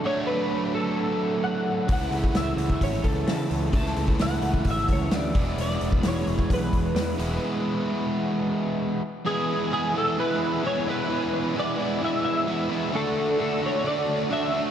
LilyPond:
<<
  \new Staff \with { instrumentName = "String machine" } { \time 4/4 \key e \mixolydian \tempo 4 = 130 << { r1 | r1 | r1 | r1 |
r1 | e'''1~ | e'''1~ | e'''1 | } \\ { r1 | r1 | r1 | r1 |
r1 | <b' e'' gis''>1~ | <b' e'' gis''>1 | <d'' fis'' a''>1 | } >> }
  \new Staff \with { instrumentName = "Clean electric guitar" } { \time 4/4 \key e \mixolydian cis''8 b'4 a'4. fis''4 | fis''4 e''4 cis''8 a'8 a''4 | a''4 fis''4 e''8 cis''8 d''4 | d''4 cis''4 b'2~ |
b'2. r4 | gis'4 gis'8 a'8 b'4 cis''8 b'8~ | b'4 d''4 e''8 e''4 r8 | a'4 a'8 cis''8 d''4 e''4 | }
  \new Staff \with { instrumentName = "Distorted electric guitar" } { \time 4/4 \key e \mixolydian <d fis a d'>1 | <cis e a e'>1 | <cis e a e'>2.~ <cis e a e'>8 <e gis b e'>8~ | <e gis b e'>2.~ <e gis b e'>8 <e gis b e'>8~ |
<e gis b e'>2.~ <e gis b e'>8 r8 | <e gis b e'>4 <e gis b e'>8 <e gis b e'>8 <e gis b e'>4 <e gis b e'>8 <e gis b e'>8 | <e gis b e'>4 <e gis b e'>8 <e gis b e'>8 <e gis b e'>4 <e gis b e'>8 <e gis b e'>8 | <d a d' fis'>4 <d a d' fis'>8 <d a d' fis'>8 <d a d' fis'>4 <d a d' fis'>8 <d a d' fis'>8 | }
  \new Staff \with { instrumentName = "Picked electric bass" } { \clef bass \time 4/4 \key e \mixolydian r1 | cis,8 cis,8 cis,8 cis,8 gis,,8 cis,8 cis8 cis,8 | cis,8 cis,8 cis,8 cis,8 gis,,8 cis,8 d,8 e,,8 | e,,8 e,,8 e,,8 e,,8 b,,8 e,,8 e,8 e,,8 |
r1 | r1 | r1 | r1 | }
  \new DrumStaff \with { instrumentName = "Drums" } \drummode { \time 4/4 r4 r4 r4 r4 | <hho bd>8 hho16 bd16 <hho sn>8 hho16 bd16 <hho bd>8 <hho bd>8 <hho sn>8 hho8 | <hho bd>16 sn16 hho16 bd16 <hho sn>8 hho16 bd16 <hho bd>8 <hho bd>8 <hho sn>8 <hho bd>8 | hho16 sn16 hho16 bd16 <hho sn>8 hho16 bd16 <hho bd>8 <hho bd>8 <hho sn>8 hho8 |
r4 r4 r4 r4 | r4 r4 r4 r4 | r4 r4 r4 r4 | r4 r4 r4 r4 | }
>>